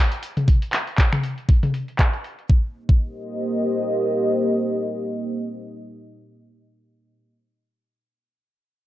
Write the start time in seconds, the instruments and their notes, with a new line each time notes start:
0.12 closed hi-hat
0.23 open hi-hat
0.37 closed hi-hat, mid tom
0.48 kick, closed hi-hat
0.62 closed hi-hat
0.73 finger snap, clap, open hi-hat
0.87 closed hi-hat
0.98 kick, clap, closed hi-hat
1.13 finger snap, closed hi-hat, mid tom
1.23 open hi-hat
1.38 closed hi-hat
1.49 kick, closed hi-hat
1.63 closed hi-hat, mid tom
1.74 open hi-hat
1.88 closed hi-hat
1.99 kick, clap, closed hi-hat
2.13 closed hi-hat
2.24 open hi-hat
2.39 closed hi-hat
2.49 analog synth pad A#3 G4 C5 D#5, kick
2.89 kick